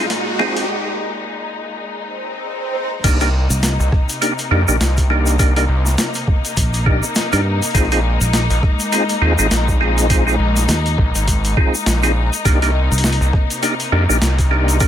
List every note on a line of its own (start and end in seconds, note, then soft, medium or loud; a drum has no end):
0.00 3.00 A#2 medium
0.00 3.00 G#3 medium
0.00 3.00 D#4 medium
0.00 riser medium
0.06 snare soft
0.10 snare medium
0.10 closed hi-hat medium
0.39 0.66 C4 medium
0.39 0.66 D#4 medium
0.39 0.66 F4 medium
0.39 0.66 G#4 medium
0.39 snare medium
0.57 closed hi-hat medium
1.86 swell medium
3.04 3.48 C2 loud
3.04 7.71 C3 medium
3.04 12.41 A#3 medium
3.04 3.19 A#3 medium
3.04 3.19 D4 medium
3.04 14.88 D#4 medium
3.04 3.19 D#4 medium
3.04 3.19 G4 loud
3.04 kick loud
3.04 closed hi-hat medium
3.04 crash loud
3.04 shaker medium
3.20 3.30 A#3 loud
3.20 3.30 D4 medium
3.20 3.30 D#4 medium
3.20 3.30 G4 loud
3.20 closed hi-hat medium
3.20 shaker soft
3.50 3.77 C2 loud
3.50 shaker medium
3.63 snare loud
3.63 closed hi-hat medium
3.63 shaker medium
3.80 3.90 C2 loud
3.80 shaker soft
3.92 kick loud
3.92 cross-stick soft
4.09 closed hi-hat soft
4.09 shaker medium
4.22 4.34 A#3 medium
4.22 4.34 D4 medium
4.22 4.34 D#4 medium
4.22 4.33 G4 medium
4.22 closed hi-hat medium
4.22 shaker medium
4.39 closed hi-hat medium
4.39 shaker soft
4.51 4.65 F2 loud
4.51 4.63 A#3 medium
4.51 4.63 D4 medium
4.51 4.63 D#4 medium
4.51 4.63 G4 medium
4.68 4.78 A#1 medium
4.68 4.77 A#3 loud
4.68 4.77 D4 medium
4.68 4.77 D#4 medium
4.68 4.77 G4 loud
4.68 shaker medium
4.80 5.67 C2 loud
4.80 snare loud
4.80 closed hi-hat medium
4.80 shaker medium
4.97 kick medium
4.97 closed hi-hat medium
4.97 shaker soft
5.10 5.36 A#3 medium
5.10 5.36 D4 medium
5.10 5.36 D#4 medium
5.10 5.36 G4 medium
5.10 cross-stick soft
5.26 closed hi-hat soft
5.26 shaker medium
5.39 5.54 A#3 loud
5.39 5.54 D4 loud
5.39 5.54 D#4 loud
5.39 5.54 G4 loud
5.39 kick loud
5.39 closed hi-hat medium
5.39 shaker medium
5.56 5.65 A#3 loud
5.56 5.65 D4 medium
5.56 5.65 D#4 medium
5.56 5.65 G4 loud
5.56 closed hi-hat medium
5.56 shaker soft
5.69 5.96 C2 medium
5.86 snare soft
5.86 shaker medium
5.98 snare loud
5.98 closed hi-hat medium
5.98 shaker medium
6.14 closed hi-hat medium
6.14 shaker soft
6.28 kick loud
6.45 closed hi-hat soft
6.45 shaker medium
6.57 7.01 A#1 loud
6.57 kick medium
6.57 closed hi-hat medium
6.57 shaker medium
6.74 closed hi-hat medium
6.74 shaker soft
6.86 7.05 A#3 medium
6.86 7.05 D4 medium
6.86 7.05 D#4 medium
6.86 7.05 G4 medium
6.86 kick loud
7.03 shaker medium
7.15 snare loud
7.15 closed hi-hat medium
7.15 shaker medium
7.33 7.59 G2 loud
7.33 7.41 A#3 medium
7.33 7.41 D4 medium
7.33 7.41 D#4 medium
7.33 7.41 G4 loud
7.33 closed hi-hat medium
7.33 shaker soft
7.62 closed hi-hat soft
7.62 shaker medium
7.65 closed hi-hat soft
7.71 8.18 A#1 loud
7.71 12.41 G#3 medium
7.71 7.89 D#4 medium
7.71 7.89 F4 medium
7.71 7.89 G#4 loud
7.71 kick loud
7.71 closed hi-hat soft
7.75 7.89 C4 medium
7.75 closed hi-hat medium
7.75 shaker medium
7.85 closed hi-hat soft
7.91 8.00 C4 loud
7.91 8.00 D#4 medium
7.91 8.00 F4 medium
7.91 8.00 G#4 loud
7.91 closed hi-hat medium
7.91 shaker soft
8.21 8.48 A#1 loud
8.21 shaker medium
8.33 snare loud
8.33 closed hi-hat medium
8.33 shaker medium
8.50 8.61 A#1 loud
8.50 closed hi-hat medium
8.50 shaker soft
8.63 kick loud
8.63 cross-stick soft
8.80 closed hi-hat soft
8.80 shaker medium
8.92 9.04 C4 medium
8.92 9.04 D#4 medium
8.92 9.04 F4 medium
8.92 9.04 G#4 medium
8.92 closed hi-hat medium
8.92 shaker medium
9.09 closed hi-hat medium
9.09 shaker soft
9.22 9.36 D#2 medium
9.22 9.34 C4 medium
9.22 9.34 D#4 medium
9.22 9.34 F4 medium
9.22 9.34 G#4 medium
9.39 9.49 G#1 loud
9.39 9.47 C4 loud
9.39 9.47 D#4 medium
9.39 9.47 F4 medium
9.39 9.47 G#4 loud
9.39 shaker medium
9.51 10.37 A#1 medium
9.51 snare loud
9.51 closed hi-hat medium
9.51 shaker medium
9.68 kick medium
9.68 shaker soft
9.81 10.07 C4 medium
9.81 10.07 D#4 medium
9.81 10.07 F4 medium
9.81 10.07 G#4 medium
9.81 cross-stick soft
9.98 closed hi-hat soft
9.98 shaker medium
10.10 10.24 C4 loud
10.10 10.24 D#4 loud
10.10 10.24 F4 loud
10.10 10.24 G#4 loud
10.10 kick loud
10.10 closed hi-hat medium
10.10 shaker medium
10.27 10.36 C4 medium
10.27 10.36 D#4 medium
10.27 10.35 F4 medium
10.27 10.36 G#4 loud
10.27 shaker soft
10.39 10.67 A#1 loud
10.57 snare soft
10.57 closed hi-hat soft
10.57 shaker medium
10.69 10.96 D#2 loud
10.69 snare loud
10.69 closed hi-hat medium
10.69 shaker medium
10.86 closed hi-hat soft
10.86 shaker soft
10.98 11.12 A#1 loud
10.98 kick loud
11.15 11.55 G#1 loud
11.15 closed hi-hat soft
11.15 shaker medium
11.28 kick medium
11.28 closed hi-hat medium
11.28 shaker medium
11.45 closed hi-hat medium
11.45 shaker soft
11.57 11.75 C4 medium
11.57 11.76 D#4 medium
11.57 11.76 F4 medium
11.57 11.75 G#4 medium
11.57 kick loud
11.75 shaker medium
11.86 12.30 A#1 medium
11.86 snare loud
11.86 closed hi-hat medium
11.86 shaker medium
12.03 12.12 C4 medium
12.03 12.12 D#4 medium
12.03 12.12 F4 medium
12.03 12.12 G#4 medium
12.03 closed hi-hat soft
12.03 shaker soft
12.33 closed hi-hat soft
12.33 shaker medium
12.45 12.89 C2 medium
12.45 14.88 C3 medium
12.45 14.88 A#3 medium
12.45 12.60 A#3 medium
12.45 12.60 D4 medium
12.45 12.60 D#4 medium
12.45 12.60 G4 loud
12.45 kick loud
12.45 closed hi-hat medium
12.45 shaker medium
12.62 12.71 A#3 loud
12.62 12.71 D4 medium
12.62 12.71 D#4 medium
12.62 12.71 G4 loud
12.62 closed hi-hat medium
12.62 shaker soft
12.92 13.18 C2 loud
12.92 shaker medium
12.98 closed hi-hat medium
13.04 snare loud
13.04 shaker medium
13.13 closed hi-hat medium
13.21 13.32 C2 loud
13.21 shaker soft
13.33 kick loud
13.33 cross-stick soft
13.50 closed hi-hat soft
13.50 shaker medium
13.63 13.75 A#3 medium
13.63 13.75 D4 medium
13.63 13.75 D#4 medium
13.63 13.75 G4 medium
13.63 closed hi-hat medium
13.63 shaker medium
13.80 closed hi-hat medium
13.80 shaker soft
13.92 14.07 F2 loud
13.92 14.04 A#3 medium
13.92 14.04 D4 medium
13.92 14.04 D#4 medium
13.92 14.04 G4 medium
14.09 14.20 A#1 loud
14.09 14.18 A#3 loud
14.09 14.18 D4 medium
14.09 14.18 D#4 medium
14.09 14.18 G4 loud
14.09 shaker medium
14.21 14.88 C2 loud
14.21 snare loud
14.21 closed hi-hat medium
14.21 shaker medium
14.38 kick medium
14.38 closed hi-hat medium
14.38 shaker soft
14.51 14.77 A#3 medium
14.51 14.77 D4 medium
14.51 14.77 D#4 medium
14.51 14.77 G4 medium
14.51 cross-stick soft
14.68 closed hi-hat soft
14.68 shaker medium
14.80 14.88 A#3 loud
14.80 14.88 D4 medium
14.80 14.88 D#4 medium
14.80 14.88 G4 loud
14.80 kick loud
14.80 closed hi-hat medium
14.80 shaker medium